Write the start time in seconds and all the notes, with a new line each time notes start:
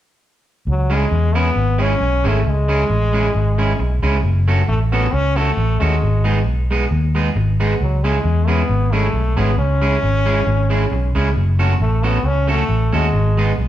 0.67 C#2 F#3
0.90 G#3 C#4 E4 G#4
1.11 E2
1.35 G#3 B3 C#4 E4 G#4
1.56 G#1
1.78 G#3 C#4 E4 G#4
2.00 B1
2.24 G#1 G#3 A3 C#4 E4 G#4
2.45 C#2 G#3
2.68 G#3 C#4 E4 G#4
2.90 A1
3.13 G#3 C#4 E4 G#4
3.35 G#1
3.58 G#3 C#4 E4 G#4
3.79 B1, muted clean electric guitar stroke
4.02 C#2 G#3 C#4 E4 G#4
4.23 F#1
4.47 A3 C#4 F#4 A4
4.68 A1 A3
4.92 A3 B3 C#4 F#4 A4
5.13 C#2 C#4
5.36 A3 C#4 F#4 A4
5.57 A1
5.80 D#2 G#3 A3 C#4 F#4 A4
6.02 G#1
6.24 G#3 B3 D#4 G#4
6.47 B1
6.71 G#3 B3 D#4 G#4
6.91 D#2
7.15 G#3 B3 D#4 G#4
7.35 G#1, muted clean electric guitar stroke
7.60 G#3 B3 D#4 G#4
7.81 C#2 F#3
8.04 G#3 C#4 E4 G#4
8.24 E2
8.48 G#3 B3 C#4 E4 G#4
8.69 G#1
8.93 G#3 A3 C#4 E4 G#4
9.13 B1
9.37 G#1 G#3 B3 C#4 E4 G#4
9.58 C#2 C#4
9.82 G#3 C#4 E4 G#4
10.03 G#1
10.26 G#3 C#4 E4 G#4
10.47 G#1
10.70 G#3 C#4 E4 G#4
10.91 B1, muted clean electric guitar stroke
11.15 C#2 G#3 C#4 E4 G#4
11.36 F#1
11.59 A3 C#4 F#4 A4
11.80 A1 A3
12.03 A3 B3 C#4 F#4 A4
12.23 C#2 C#4
12.47 A3 C#4 F#4 A4
12.68 A1
12.93 D#2 G#3 A3 C#4 F#4 A4
13.13 G#1
13.37 G#3 B3 D#4 G#4
13.58 B1